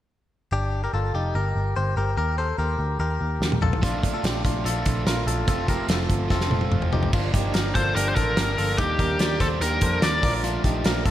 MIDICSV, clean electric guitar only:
0, 0, Header, 1, 2, 480
1, 0, Start_track
1, 0, Tempo, 412939
1, 614, Time_signature, 4, 2, 24, 8
1, 12911, End_track
2, 0, Start_track
2, 0, Title_t, "Clean electric guitar"
2, 0, Program_c, 0, 27
2, 611, Note_on_c, 0, 67, 76
2, 618, Note_on_c, 0, 62, 61
2, 950, Note_off_c, 0, 67, 0
2, 954, Note_off_c, 0, 62, 0
2, 973, Note_on_c, 0, 70, 58
2, 983, Note_on_c, 0, 67, 47
2, 1084, Note_off_c, 0, 70, 0
2, 1089, Note_on_c, 0, 69, 62
2, 1094, Note_off_c, 0, 67, 0
2, 1099, Note_on_c, 0, 65, 53
2, 1329, Note_off_c, 0, 65, 0
2, 1331, Note_off_c, 0, 69, 0
2, 1334, Note_on_c, 0, 67, 64
2, 1342, Note_on_c, 0, 63, 52
2, 1568, Note_off_c, 0, 67, 0
2, 1571, Note_on_c, 0, 70, 57
2, 1578, Note_off_c, 0, 63, 0
2, 1582, Note_on_c, 0, 67, 43
2, 2023, Note_off_c, 0, 70, 0
2, 2029, Note_off_c, 0, 67, 0
2, 2050, Note_on_c, 0, 72, 69
2, 2061, Note_on_c, 0, 67, 52
2, 2286, Note_off_c, 0, 72, 0
2, 2287, Note_off_c, 0, 67, 0
2, 2291, Note_on_c, 0, 70, 67
2, 2301, Note_on_c, 0, 67, 55
2, 2515, Note_off_c, 0, 70, 0
2, 2525, Note_off_c, 0, 67, 0
2, 2528, Note_on_c, 0, 70, 78
2, 2539, Note_on_c, 0, 67, 59
2, 2763, Note_off_c, 0, 70, 0
2, 2768, Note_on_c, 0, 72, 73
2, 2772, Note_off_c, 0, 67, 0
2, 2777, Note_on_c, 0, 69, 58
2, 3001, Note_off_c, 0, 72, 0
2, 3005, Note_on_c, 0, 70, 66
2, 3009, Note_off_c, 0, 69, 0
2, 3014, Note_on_c, 0, 67, 55
2, 3460, Note_off_c, 0, 70, 0
2, 3464, Note_off_c, 0, 67, 0
2, 3485, Note_on_c, 0, 70, 63
2, 3496, Note_on_c, 0, 67, 48
2, 4165, Note_off_c, 0, 70, 0
2, 4171, Note_off_c, 0, 67, 0
2, 4208, Note_on_c, 0, 69, 70
2, 4218, Note_on_c, 0, 65, 53
2, 4436, Note_off_c, 0, 65, 0
2, 4450, Note_off_c, 0, 69, 0
2, 4450, Note_on_c, 0, 65, 77
2, 4458, Note_on_c, 0, 62, 61
2, 4789, Note_off_c, 0, 65, 0
2, 4794, Note_off_c, 0, 62, 0
2, 4810, Note_on_c, 0, 69, 67
2, 4816, Note_on_c, 0, 65, 48
2, 4929, Note_off_c, 0, 65, 0
2, 4931, Note_off_c, 0, 69, 0
2, 4933, Note_on_c, 0, 67, 65
2, 4942, Note_on_c, 0, 62, 54
2, 5164, Note_off_c, 0, 62, 0
2, 5166, Note_off_c, 0, 67, 0
2, 5171, Note_on_c, 0, 65, 67
2, 5178, Note_on_c, 0, 62, 48
2, 5407, Note_off_c, 0, 65, 0
2, 5410, Note_on_c, 0, 69, 61
2, 5415, Note_off_c, 0, 62, 0
2, 5421, Note_on_c, 0, 65, 46
2, 5862, Note_off_c, 0, 69, 0
2, 5868, Note_off_c, 0, 65, 0
2, 5891, Note_on_c, 0, 70, 69
2, 5898, Note_on_c, 0, 65, 53
2, 6124, Note_off_c, 0, 70, 0
2, 6127, Note_off_c, 0, 65, 0
2, 6129, Note_on_c, 0, 69, 68
2, 6141, Note_on_c, 0, 65, 53
2, 6354, Note_off_c, 0, 69, 0
2, 6362, Note_off_c, 0, 65, 0
2, 6368, Note_on_c, 0, 69, 78
2, 6376, Note_on_c, 0, 65, 58
2, 6608, Note_off_c, 0, 69, 0
2, 6613, Note_on_c, 0, 70, 77
2, 6615, Note_off_c, 0, 65, 0
2, 6623, Note_on_c, 0, 67, 60
2, 6844, Note_off_c, 0, 70, 0
2, 6849, Note_on_c, 0, 69, 67
2, 6852, Note_off_c, 0, 67, 0
2, 6856, Note_on_c, 0, 65, 55
2, 7302, Note_off_c, 0, 69, 0
2, 7306, Note_off_c, 0, 65, 0
2, 7331, Note_on_c, 0, 69, 69
2, 7341, Note_on_c, 0, 65, 56
2, 8009, Note_off_c, 0, 69, 0
2, 8014, Note_off_c, 0, 65, 0
2, 8053, Note_on_c, 0, 67, 73
2, 8062, Note_on_c, 0, 63, 55
2, 8290, Note_off_c, 0, 67, 0
2, 8294, Note_on_c, 0, 65, 79
2, 8298, Note_off_c, 0, 63, 0
2, 8303, Note_on_c, 0, 62, 57
2, 8524, Note_off_c, 0, 65, 0
2, 8529, Note_on_c, 0, 67, 67
2, 8533, Note_off_c, 0, 62, 0
2, 8537, Note_on_c, 0, 63, 55
2, 8762, Note_off_c, 0, 67, 0
2, 8765, Note_on_c, 0, 70, 72
2, 8776, Note_off_c, 0, 63, 0
2, 8776, Note_on_c, 0, 67, 52
2, 9008, Note_off_c, 0, 70, 0
2, 9013, Note_on_c, 0, 69, 67
2, 9015, Note_off_c, 0, 67, 0
2, 9024, Note_on_c, 0, 65, 50
2, 9250, Note_off_c, 0, 65, 0
2, 9253, Note_off_c, 0, 69, 0
2, 9255, Note_on_c, 0, 67, 68
2, 9263, Note_on_c, 0, 62, 52
2, 9490, Note_on_c, 0, 69, 78
2, 9494, Note_off_c, 0, 67, 0
2, 9499, Note_off_c, 0, 62, 0
2, 9499, Note_on_c, 0, 65, 59
2, 9725, Note_off_c, 0, 69, 0
2, 9730, Note_on_c, 0, 70, 75
2, 9735, Note_off_c, 0, 65, 0
2, 9739, Note_on_c, 0, 67, 56
2, 9965, Note_off_c, 0, 70, 0
2, 9970, Note_on_c, 0, 69, 73
2, 9974, Note_off_c, 0, 67, 0
2, 9979, Note_on_c, 0, 65, 55
2, 10209, Note_off_c, 0, 65, 0
2, 10212, Note_off_c, 0, 69, 0
2, 10213, Note_on_c, 0, 67, 79
2, 10223, Note_on_c, 0, 63, 63
2, 10454, Note_off_c, 0, 67, 0
2, 10456, Note_on_c, 0, 70, 79
2, 10458, Note_off_c, 0, 63, 0
2, 10466, Note_on_c, 0, 67, 57
2, 10692, Note_off_c, 0, 70, 0
2, 10697, Note_on_c, 0, 74, 76
2, 10700, Note_off_c, 0, 67, 0
2, 10708, Note_on_c, 0, 70, 52
2, 10931, Note_off_c, 0, 74, 0
2, 10936, Note_on_c, 0, 72, 75
2, 10941, Note_off_c, 0, 70, 0
2, 10946, Note_on_c, 0, 69, 56
2, 11175, Note_off_c, 0, 69, 0
2, 11175, Note_off_c, 0, 72, 0
2, 11179, Note_on_c, 0, 70, 70
2, 11187, Note_on_c, 0, 67, 57
2, 11417, Note_off_c, 0, 70, 0
2, 11419, Note_on_c, 0, 72, 65
2, 11421, Note_off_c, 0, 67, 0
2, 11424, Note_on_c, 0, 69, 54
2, 11653, Note_off_c, 0, 72, 0
2, 11658, Note_on_c, 0, 74, 73
2, 11660, Note_off_c, 0, 69, 0
2, 11666, Note_on_c, 0, 70, 55
2, 11882, Note_off_c, 0, 70, 0
2, 11891, Note_off_c, 0, 74, 0
2, 11896, Note_on_c, 0, 70, 67
2, 11905, Note_on_c, 0, 65, 53
2, 12119, Note_off_c, 0, 65, 0
2, 12133, Note_on_c, 0, 65, 85
2, 12135, Note_off_c, 0, 70, 0
2, 12144, Note_on_c, 0, 62, 59
2, 12370, Note_off_c, 0, 65, 0
2, 12374, Note_on_c, 0, 67, 69
2, 12380, Note_off_c, 0, 62, 0
2, 12386, Note_on_c, 0, 63, 57
2, 12615, Note_off_c, 0, 67, 0
2, 12617, Note_on_c, 0, 70, 75
2, 12621, Note_off_c, 0, 63, 0
2, 12626, Note_on_c, 0, 65, 53
2, 12849, Note_off_c, 0, 70, 0
2, 12851, Note_off_c, 0, 65, 0
2, 12854, Note_on_c, 0, 69, 69
2, 12865, Note_on_c, 0, 65, 58
2, 12911, Note_off_c, 0, 65, 0
2, 12911, Note_off_c, 0, 69, 0
2, 12911, End_track
0, 0, End_of_file